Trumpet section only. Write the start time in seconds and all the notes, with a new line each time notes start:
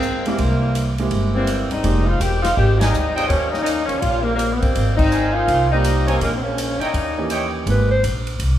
2.79 G4 A#4 D#5 G#5
3.16 F4 C#5 D#5 G5
5.11 A#4 C5 G5 G#5
6.07 F4 A#4 C#5 G#5
6.80 E4 C#5 D#5 G5
7.30 E4 C#5 D#5 G5